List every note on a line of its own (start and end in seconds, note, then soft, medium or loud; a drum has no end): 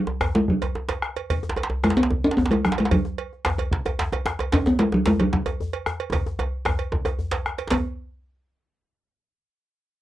0.00 0.37 F#3 loud
0.07 djembe tone medium
0.21 bombo rim loud
0.21 cowbell medium
0.21 djembe slap medium
0.21 djembe tone medium
0.21 djembe bass medium
0.35 0.51 G#3 loud
0.35 djembe slap medium
0.48 1.17 F#3 medium
0.48 bombo rim soft
0.48 bombo low loud
0.62 cowbell medium
0.62 djembe slap medium
0.62 djembe tone medium
0.75 djembe tone medium
0.89 cowbell medium
0.89 djembe slap medium
0.89 djembe bass soft
1.02 bombo rim loud
1.02 djembe slap medium
1.16 cowbell medium
1.16 djembe slap medium
1.30 bombo low loud
1.30 cowbell medium
1.30 djembe slap soft
1.30 djembe bass medium
1.43 djembe slap medium
1.43 djembe tone medium
1.49 djembe slap medium
1.56 cowbell medium
1.56 djembe tone medium
1.63 djembe slap medium
1.70 djembe slap soft
1.70 djembe tone medium
1.84 1.90 G#3 loud
1.84 bombo rim loud
1.84 cowbell medium
1.84 djembe slap medium
1.84 djembe tone medium
1.84 djembe bass medium
1.90 djembe slap medium
1.97 2.26 B3 loud
1.97 cowbell medium
1.97 djembe tone medium
2.03 djembe slap medium
2.10 bombo low loud
2.10 djembe tone medium
2.24 2.38 C#4 loud
2.24 djembe slap medium
2.24 djembe tone medium
2.31 djembe slap medium
2.37 2.50 B3 medium
2.37 djembe tone medium
2.37 djembe bass medium
2.46 djembe slap medium
2.51 2.67 G#3 medium
2.51 bombo rim soft
2.51 cowbell medium
2.51 djembe slap soft
2.51 djembe tone medium
2.65 2.82 F#3 medium
2.65 bombo rim loud
2.65 djembe slap medium
2.65 djembe tone medium
2.72 djembe slap medium
2.78 2.94 G#3 medium
2.78 cowbell medium
2.78 djembe tone medium
2.85 djembe slap medium
2.91 4.00 F#3 medium
2.91 bombo low loud
2.91 cowbell medium
2.91 djembe slap soft
2.91 djembe tone medium
2.91 djembe bass medium
3.05 djembe slap medium
3.05 djembe tone medium
3.18 cowbell medium
3.18 djembe slap soft
3.33 djembe slap soft
3.45 bombo rim loud
3.45 cowbell medium
3.45 djembe slap loud
3.46 djembe slap medium
3.46 djembe tone medium
3.46 djembe bass medium
3.58 cowbell medium
3.58 djembe slap soft
3.58 djembe tone medium
3.71 bombo low loud
3.71 djembe slap medium
3.85 cowbell medium
3.85 djembe slap medium
3.85 djembe tone medium
3.99 djembe slap loud
3.99 djembe bass medium
4.12 bombo rim soft
4.12 cowbell medium
4.12 djembe tone medium
4.26 bombo rim loud
4.26 djembe slap medium
4.26 djembe tone medium
4.39 cowbell medium
4.39 djembe tone medium
4.52 4.69 C#4 loud
4.52 bombo low loud
4.52 cowbell medium
4.52 djembe slap loud
4.52 djembe slap soft
4.52 djembe bass loud
4.66 4.81 B3 loud
4.66 djembe slap medium
4.66 djembe tone medium
4.79 4.96 G#3 loud
4.79 cowbell medium
4.79 djembe slap medium
4.79 djembe slap soft
4.92 5.07 F#3 loud
4.92 djembe slap soft
4.92 djembe tone medium
5.06 5.22 G#3 loud
5.06 cowbell soft
5.06 djembe slap loud
5.06 djembe tone medium
5.06 djembe bass medium
5.19 5.33 F#3 medium
5.19 cowbell medium
5.19 djembe slap soft
5.19 djembe tone medium
5.33 7.42 F#3 medium
5.33 bombo low loud
5.33 djembe slap medium
5.46 cowbell medium
5.46 djembe slap medium
5.46 djembe tone medium
5.61 djembe bass medium
5.73 bombo rim soft
5.73 cowbell medium
5.73 djembe slap soft
5.86 bombo rim loud
5.86 djembe slap medium
5.86 djembe tone medium
6.00 cowbell medium
6.12 bombo rim soft
6.12 bombo low loud
6.12 cowbell medium
6.12 djembe slap soft
6.12 djembe tone loud
6.12 djembe bass medium
6.26 djembe slap medium
6.26 djembe tone medium
6.39 cowbell medium
6.39 djembe tone loud
6.65 bombo rim loud
6.65 cowbell medium
6.65 djembe slap medium
6.65 djembe tone loud
6.65 djembe tone medium
6.65 djembe bass medium
6.79 cowbell medium
6.79 djembe slap soft
6.92 bombo rim soft
6.92 bombo low loud
6.92 djembe tone loud
7.05 cowbell medium
7.05 djembe slap medium
7.05 djembe tone loud
7.05 djembe tone medium
7.19 djembe slap soft
7.19 djembe bass medium
7.31 bombo rim soft
7.31 cowbell medium
7.31 djembe slap loud
7.31 djembe bass soft
7.46 bombo rim loud
7.46 djembe slap medium
7.58 cowbell medium
7.58 djembe slap medium
7.70 7.84 B3 medium
7.70 bombo low medium
7.70 cowbell medium
7.70 djembe slap loud
7.70 djembe bass medium